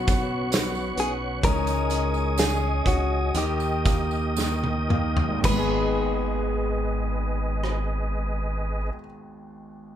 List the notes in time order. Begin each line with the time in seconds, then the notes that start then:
Already playing: B1 B3 C#4 F#4 B4 C#5 F#5 C#6
0.06 B3, kick, closed hi-hat, tambourine
0.52 B3, snare, closed hi-hat, tambourine
0.75 tambourine
0.96 B1 C#4 F#4 G#4 B4, closed hi-hat
1.41 C#2 C#3 E3 G#3 C#4 D#4 A#4 D#5 G#5 D#6, kick, closed hi-hat, tambourine
1.46 G#4
1.67 closed hi-hat, tambourine
1.89 C#4, closed hi-hat, tambourine
2.14 tambourine
2.37 C#4 G#4, snare, closed hi-hat, tambourine
2.85 C#2 C#4 F#4, kick, closed hi-hat
3.34 D#2 D#3 A#3 D#4 G4 A#4 D#5 G5, closed hi-hat, tambourine
3.60 tambourine
3.85 A#3, kick, closed hi-hat, tambourine
4.11 tambourine
4.37 D#3, snare, tambourine
4.64 high tom
4.88 A#3 D#4 G4 A#4, mid tom
5.17 floor tom
5.28 G#1
5.35 D#2 G#2
5.41 G#1 D#3 G#4 B4 D#5, kick, crash, tambourine
5.45 G#3 B4
5.51 B3 D#4
5.59 G#4
7.64 cross-stick